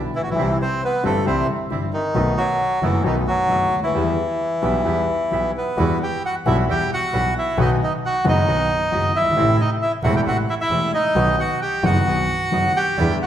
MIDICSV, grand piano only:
0, 0, Header, 1, 2, 480
1, 0, Start_track
1, 0, Key_signature, 1, "minor"
1, 0, Tempo, 445104
1, 408, Time_signature, 4, 2, 24, 8
1, 3767, Tempo, 456969
1, 6647, Tempo, 447094
1, 11447, Tempo, 455581
1, 14145, End_track
2, 0, Start_track
2, 0, Title_t, "Grand piano"
2, 0, Program_c, 0, 0
2, 0, Note_on_c, 0, 35, 51
2, 0, Note_on_c, 0, 47, 53
2, 0, Note_on_c, 0, 50, 43
2, 0, Note_on_c, 0, 55, 40
2, 0, Note_on_c, 0, 59, 40
2, 0, Note_on_c, 0, 64, 47
2, 125, Note_off_c, 0, 55, 0
2, 126, Note_off_c, 0, 35, 0
2, 126, Note_off_c, 0, 50, 0
2, 127, Note_off_c, 0, 59, 0
2, 128, Note_off_c, 0, 47, 0
2, 129, Note_off_c, 0, 64, 0
2, 229, Note_on_c, 0, 33, 45
2, 288, Note_off_c, 0, 33, 0
2, 291, Note_on_c, 0, 34, 55
2, 341, Note_on_c, 0, 35, 63
2, 349, Note_off_c, 0, 34, 0
2, 390, Note_on_c, 0, 36, 74
2, 390, Note_on_c, 0, 48, 73
2, 391, Note_on_c, 0, 52, 60
2, 391, Note_on_c, 0, 55, 56
2, 395, Note_on_c, 0, 60, 60
2, 398, Note_on_c, 0, 67, 73
2, 404, Note_off_c, 0, 35, 0
2, 600, Note_off_c, 0, 36, 0
2, 600, Note_off_c, 0, 48, 0
2, 600, Note_off_c, 0, 52, 0
2, 600, Note_off_c, 0, 55, 0
2, 602, Note_off_c, 0, 60, 0
2, 604, Note_off_c, 0, 67, 0
2, 1113, Note_on_c, 0, 31, 74
2, 1113, Note_on_c, 0, 52, 60
2, 1115, Note_on_c, 0, 60, 60
2, 1116, Note_on_c, 0, 43, 79
2, 1117, Note_on_c, 0, 55, 59
2, 1120, Note_on_c, 0, 67, 69
2, 1319, Note_off_c, 0, 52, 0
2, 1320, Note_off_c, 0, 31, 0
2, 1321, Note_off_c, 0, 43, 0
2, 1321, Note_off_c, 0, 60, 0
2, 1322, Note_off_c, 0, 55, 0
2, 1323, Note_off_c, 0, 67, 0
2, 1355, Note_on_c, 0, 52, 69
2, 1355, Note_on_c, 0, 55, 61
2, 1357, Note_on_c, 0, 48, 78
2, 1359, Note_on_c, 0, 60, 62
2, 1360, Note_on_c, 0, 36, 77
2, 1360, Note_on_c, 0, 67, 73
2, 1560, Note_off_c, 0, 52, 0
2, 1560, Note_off_c, 0, 55, 0
2, 1562, Note_off_c, 0, 48, 0
2, 1562, Note_off_c, 0, 60, 0
2, 1563, Note_off_c, 0, 36, 0
2, 1563, Note_off_c, 0, 67, 0
2, 1833, Note_on_c, 0, 55, 40
2, 1834, Note_on_c, 0, 52, 42
2, 1835, Note_on_c, 0, 31, 54
2, 1837, Note_on_c, 0, 43, 54
2, 1839, Note_on_c, 0, 60, 39
2, 1840, Note_on_c, 0, 67, 48
2, 2039, Note_off_c, 0, 52, 0
2, 2039, Note_off_c, 0, 55, 0
2, 2040, Note_off_c, 0, 31, 0
2, 2041, Note_off_c, 0, 43, 0
2, 2042, Note_off_c, 0, 60, 0
2, 2042, Note_off_c, 0, 67, 0
2, 2313, Note_on_c, 0, 51, 65
2, 2314, Note_on_c, 0, 35, 75
2, 2314, Note_on_c, 0, 57, 61
2, 2317, Note_on_c, 0, 47, 77
2, 2319, Note_on_c, 0, 59, 62
2, 2320, Note_on_c, 0, 66, 73
2, 2518, Note_off_c, 0, 35, 0
2, 2518, Note_off_c, 0, 51, 0
2, 2518, Note_off_c, 0, 57, 0
2, 2519, Note_off_c, 0, 47, 0
2, 2521, Note_off_c, 0, 59, 0
2, 2521, Note_off_c, 0, 66, 0
2, 3037, Note_on_c, 0, 51, 66
2, 3039, Note_on_c, 0, 57, 59
2, 3041, Note_on_c, 0, 30, 76
2, 3042, Note_on_c, 0, 59, 61
2, 3043, Note_on_c, 0, 42, 76
2, 3046, Note_on_c, 0, 66, 73
2, 3242, Note_off_c, 0, 51, 0
2, 3244, Note_off_c, 0, 30, 0
2, 3244, Note_off_c, 0, 57, 0
2, 3245, Note_off_c, 0, 42, 0
2, 3245, Note_off_c, 0, 59, 0
2, 3247, Note_off_c, 0, 66, 0
2, 3275, Note_on_c, 0, 51, 72
2, 3277, Note_on_c, 0, 47, 80
2, 3278, Note_on_c, 0, 57, 62
2, 3280, Note_on_c, 0, 35, 82
2, 3282, Note_on_c, 0, 59, 63
2, 3284, Note_on_c, 0, 66, 72
2, 3482, Note_off_c, 0, 51, 0
2, 3483, Note_off_c, 0, 47, 0
2, 3483, Note_off_c, 0, 57, 0
2, 3484, Note_off_c, 0, 35, 0
2, 3485, Note_off_c, 0, 59, 0
2, 3486, Note_off_c, 0, 66, 0
2, 3756, Note_on_c, 0, 51, 46
2, 3759, Note_on_c, 0, 30, 57
2, 3759, Note_on_c, 0, 42, 52
2, 3760, Note_on_c, 0, 57, 41
2, 3764, Note_on_c, 0, 66, 47
2, 3765, Note_on_c, 0, 59, 40
2, 3959, Note_off_c, 0, 51, 0
2, 3961, Note_off_c, 0, 30, 0
2, 3961, Note_off_c, 0, 42, 0
2, 3961, Note_off_c, 0, 57, 0
2, 3963, Note_off_c, 0, 59, 0
2, 3963, Note_off_c, 0, 66, 0
2, 4065, Note_on_c, 0, 37, 50
2, 4122, Note_off_c, 0, 37, 0
2, 4125, Note_on_c, 0, 38, 52
2, 4182, Note_off_c, 0, 38, 0
2, 4191, Note_on_c, 0, 39, 66
2, 4244, Note_on_c, 0, 52, 75
2, 4245, Note_off_c, 0, 39, 0
2, 4245, Note_on_c, 0, 40, 79
2, 4247, Note_on_c, 0, 59, 63
2, 4250, Note_on_c, 0, 55, 61
2, 4252, Note_on_c, 0, 67, 67
2, 4443, Note_off_c, 0, 40, 0
2, 4443, Note_off_c, 0, 52, 0
2, 4444, Note_off_c, 0, 59, 0
2, 4445, Note_off_c, 0, 55, 0
2, 4446, Note_off_c, 0, 67, 0
2, 4950, Note_on_c, 0, 52, 58
2, 4952, Note_on_c, 0, 47, 73
2, 4953, Note_on_c, 0, 35, 77
2, 4953, Note_on_c, 0, 55, 57
2, 4958, Note_on_c, 0, 59, 61
2, 4960, Note_on_c, 0, 67, 67
2, 5153, Note_off_c, 0, 52, 0
2, 5155, Note_off_c, 0, 35, 0
2, 5155, Note_off_c, 0, 47, 0
2, 5155, Note_off_c, 0, 55, 0
2, 5157, Note_off_c, 0, 59, 0
2, 5158, Note_off_c, 0, 67, 0
2, 5191, Note_on_c, 0, 52, 72
2, 5193, Note_on_c, 0, 55, 60
2, 5197, Note_on_c, 0, 40, 78
2, 5197, Note_on_c, 0, 59, 61
2, 5200, Note_on_c, 0, 67, 68
2, 5396, Note_off_c, 0, 55, 0
2, 5398, Note_off_c, 0, 52, 0
2, 5399, Note_off_c, 0, 40, 0
2, 5399, Note_off_c, 0, 59, 0
2, 5400, Note_off_c, 0, 67, 0
2, 5674, Note_on_c, 0, 52, 42
2, 5678, Note_on_c, 0, 47, 52
2, 5680, Note_on_c, 0, 35, 51
2, 5680, Note_on_c, 0, 55, 39
2, 5683, Note_on_c, 0, 67, 44
2, 5684, Note_on_c, 0, 59, 37
2, 5884, Note_off_c, 0, 52, 0
2, 5886, Note_off_c, 0, 47, 0
2, 5887, Note_off_c, 0, 35, 0
2, 5887, Note_off_c, 0, 55, 0
2, 5889, Note_off_c, 0, 59, 0
2, 5889, Note_off_c, 0, 67, 0
2, 6158, Note_on_c, 0, 52, 83
2, 6160, Note_on_c, 0, 40, 81
2, 6163, Note_on_c, 0, 55, 65
2, 6163, Note_on_c, 0, 66, 80
2, 6165, Note_on_c, 0, 59, 64
2, 6365, Note_off_c, 0, 40, 0
2, 6366, Note_off_c, 0, 55, 0
2, 6366, Note_off_c, 0, 66, 0
2, 6367, Note_off_c, 0, 52, 0
2, 6367, Note_off_c, 0, 59, 0
2, 6886, Note_on_c, 0, 52, 71
2, 6889, Note_on_c, 0, 47, 85
2, 6889, Note_on_c, 0, 55, 69
2, 6891, Note_on_c, 0, 59, 66
2, 6892, Note_on_c, 0, 35, 78
2, 6892, Note_on_c, 0, 66, 80
2, 7090, Note_off_c, 0, 52, 0
2, 7092, Note_off_c, 0, 47, 0
2, 7092, Note_off_c, 0, 55, 0
2, 7093, Note_off_c, 0, 35, 0
2, 7093, Note_off_c, 0, 59, 0
2, 7093, Note_off_c, 0, 66, 0
2, 7130, Note_on_c, 0, 52, 55
2, 7131, Note_on_c, 0, 59, 49
2, 7132, Note_on_c, 0, 55, 46
2, 7133, Note_on_c, 0, 40, 57
2, 7334, Note_off_c, 0, 40, 0
2, 7334, Note_off_c, 0, 52, 0
2, 7334, Note_off_c, 0, 55, 0
2, 7334, Note_off_c, 0, 59, 0
2, 7613, Note_on_c, 0, 52, 51
2, 7614, Note_on_c, 0, 55, 46
2, 7617, Note_on_c, 0, 35, 59
2, 7617, Note_on_c, 0, 47, 58
2, 7617, Note_on_c, 0, 59, 49
2, 7623, Note_on_c, 0, 66, 54
2, 7814, Note_off_c, 0, 52, 0
2, 7815, Note_off_c, 0, 55, 0
2, 7816, Note_off_c, 0, 35, 0
2, 7816, Note_off_c, 0, 47, 0
2, 7816, Note_off_c, 0, 59, 0
2, 7819, Note_off_c, 0, 66, 0
2, 8084, Note_on_c, 0, 54, 62
2, 8085, Note_on_c, 0, 51, 73
2, 8088, Note_on_c, 0, 47, 92
2, 8090, Note_on_c, 0, 66, 85
2, 8091, Note_on_c, 0, 59, 67
2, 8092, Note_on_c, 0, 35, 90
2, 8291, Note_off_c, 0, 54, 0
2, 8292, Note_off_c, 0, 51, 0
2, 8293, Note_off_c, 0, 47, 0
2, 8294, Note_off_c, 0, 59, 0
2, 8294, Note_off_c, 0, 66, 0
2, 8295, Note_off_c, 0, 35, 0
2, 8804, Note_on_c, 0, 54, 69
2, 8806, Note_on_c, 0, 42, 90
2, 8809, Note_on_c, 0, 30, 89
2, 8810, Note_on_c, 0, 51, 78
2, 8812, Note_on_c, 0, 59, 67
2, 8814, Note_on_c, 0, 66, 78
2, 9012, Note_off_c, 0, 54, 0
2, 9013, Note_off_c, 0, 42, 0
2, 9015, Note_off_c, 0, 30, 0
2, 9015, Note_off_c, 0, 51, 0
2, 9016, Note_off_c, 0, 59, 0
2, 9017, Note_off_c, 0, 66, 0
2, 9052, Note_on_c, 0, 51, 55
2, 9052, Note_on_c, 0, 54, 48
2, 9055, Note_on_c, 0, 35, 59
2, 9056, Note_on_c, 0, 47, 59
2, 9056, Note_on_c, 0, 59, 46
2, 9056, Note_on_c, 0, 66, 54
2, 9256, Note_off_c, 0, 51, 0
2, 9256, Note_off_c, 0, 54, 0
2, 9257, Note_off_c, 0, 35, 0
2, 9258, Note_off_c, 0, 47, 0
2, 9258, Note_off_c, 0, 59, 0
2, 9258, Note_off_c, 0, 66, 0
2, 9526, Note_on_c, 0, 54, 49
2, 9527, Note_on_c, 0, 30, 57
2, 9527, Note_on_c, 0, 51, 48
2, 9531, Note_on_c, 0, 42, 61
2, 9531, Note_on_c, 0, 59, 46
2, 9531, Note_on_c, 0, 66, 57
2, 9731, Note_off_c, 0, 54, 0
2, 9732, Note_off_c, 0, 30, 0
2, 9732, Note_off_c, 0, 51, 0
2, 9734, Note_off_c, 0, 42, 0
2, 9734, Note_off_c, 0, 59, 0
2, 9734, Note_off_c, 0, 66, 0
2, 9837, Note_on_c, 0, 30, 52
2, 9895, Note_off_c, 0, 30, 0
2, 9897, Note_on_c, 0, 31, 63
2, 9949, Note_on_c, 0, 32, 78
2, 9954, Note_off_c, 0, 31, 0
2, 10003, Note_on_c, 0, 48, 80
2, 10007, Note_on_c, 0, 52, 68
2, 10009, Note_on_c, 0, 33, 85
2, 10009, Note_on_c, 0, 57, 70
2, 10009, Note_on_c, 0, 64, 83
2, 10010, Note_off_c, 0, 32, 0
2, 10011, Note_on_c, 0, 45, 89
2, 10207, Note_off_c, 0, 48, 0
2, 10209, Note_off_c, 0, 52, 0
2, 10210, Note_off_c, 0, 33, 0
2, 10210, Note_off_c, 0, 57, 0
2, 10210, Note_off_c, 0, 64, 0
2, 10211, Note_off_c, 0, 45, 0
2, 10726, Note_on_c, 0, 52, 73
2, 10726, Note_on_c, 0, 57, 73
2, 10727, Note_on_c, 0, 48, 71
2, 10731, Note_on_c, 0, 40, 92
2, 10733, Note_on_c, 0, 28, 90
2, 10733, Note_on_c, 0, 64, 85
2, 10928, Note_off_c, 0, 48, 0
2, 10928, Note_off_c, 0, 52, 0
2, 10928, Note_off_c, 0, 57, 0
2, 10930, Note_off_c, 0, 40, 0
2, 10931, Note_off_c, 0, 28, 0
2, 10931, Note_off_c, 0, 64, 0
2, 10967, Note_on_c, 0, 48, 52
2, 10967, Note_on_c, 0, 52, 47
2, 10969, Note_on_c, 0, 45, 60
2, 10970, Note_on_c, 0, 33, 61
2, 10974, Note_on_c, 0, 57, 48
2, 11168, Note_off_c, 0, 48, 0
2, 11168, Note_off_c, 0, 52, 0
2, 11169, Note_off_c, 0, 45, 0
2, 11170, Note_off_c, 0, 33, 0
2, 11172, Note_off_c, 0, 57, 0
2, 11443, Note_on_c, 0, 48, 47
2, 11445, Note_on_c, 0, 52, 47
2, 11446, Note_on_c, 0, 40, 61
2, 11448, Note_on_c, 0, 28, 62
2, 11448, Note_on_c, 0, 57, 44
2, 11451, Note_on_c, 0, 64, 55
2, 11643, Note_off_c, 0, 48, 0
2, 11644, Note_off_c, 0, 52, 0
2, 11645, Note_off_c, 0, 40, 0
2, 11646, Note_off_c, 0, 28, 0
2, 11646, Note_off_c, 0, 57, 0
2, 11647, Note_off_c, 0, 64, 0
2, 11914, Note_on_c, 0, 51, 73
2, 11918, Note_on_c, 0, 47, 86
2, 11919, Note_on_c, 0, 35, 83
2, 11920, Note_on_c, 0, 54, 70
2, 11922, Note_on_c, 0, 59, 64
2, 11924, Note_on_c, 0, 66, 81
2, 12118, Note_off_c, 0, 51, 0
2, 12120, Note_off_c, 0, 47, 0
2, 12121, Note_off_c, 0, 35, 0
2, 12121, Note_off_c, 0, 54, 0
2, 12123, Note_off_c, 0, 59, 0
2, 12123, Note_off_c, 0, 66, 0
2, 12631, Note_on_c, 0, 30, 85
2, 12632, Note_on_c, 0, 51, 74
2, 12633, Note_on_c, 0, 42, 83
2, 12633, Note_on_c, 0, 59, 69
2, 12634, Note_on_c, 0, 54, 65
2, 12635, Note_on_c, 0, 66, 79
2, 12837, Note_off_c, 0, 30, 0
2, 12837, Note_off_c, 0, 42, 0
2, 12837, Note_off_c, 0, 51, 0
2, 12838, Note_off_c, 0, 54, 0
2, 12838, Note_off_c, 0, 59, 0
2, 12839, Note_off_c, 0, 66, 0
2, 12876, Note_on_c, 0, 51, 46
2, 12878, Note_on_c, 0, 47, 55
2, 12878, Note_on_c, 0, 54, 44
2, 12880, Note_on_c, 0, 35, 59
2, 12880, Note_on_c, 0, 59, 45
2, 12886, Note_on_c, 0, 66, 51
2, 13080, Note_off_c, 0, 51, 0
2, 13080, Note_off_c, 0, 54, 0
2, 13081, Note_off_c, 0, 35, 0
2, 13081, Note_off_c, 0, 47, 0
2, 13081, Note_off_c, 0, 59, 0
2, 13085, Note_off_c, 0, 66, 0
2, 13352, Note_on_c, 0, 51, 47
2, 13353, Note_on_c, 0, 54, 47
2, 13355, Note_on_c, 0, 42, 59
2, 13356, Note_on_c, 0, 30, 57
2, 13360, Note_on_c, 0, 59, 45
2, 13362, Note_on_c, 0, 66, 55
2, 13560, Note_off_c, 0, 51, 0
2, 13560, Note_off_c, 0, 54, 0
2, 13561, Note_off_c, 0, 42, 0
2, 13562, Note_off_c, 0, 30, 0
2, 13563, Note_off_c, 0, 59, 0
2, 13565, Note_off_c, 0, 66, 0
2, 13841, Note_on_c, 0, 55, 66
2, 13842, Note_on_c, 0, 40, 80
2, 13842, Note_on_c, 0, 50, 74
2, 13842, Note_on_c, 0, 52, 80
2, 13843, Note_on_c, 0, 59, 66
2, 13848, Note_on_c, 0, 64, 77
2, 14045, Note_off_c, 0, 55, 0
2, 14046, Note_off_c, 0, 40, 0
2, 14046, Note_off_c, 0, 50, 0
2, 14046, Note_off_c, 0, 52, 0
2, 14046, Note_off_c, 0, 59, 0
2, 14048, Note_off_c, 0, 64, 0
2, 14145, End_track
0, 0, End_of_file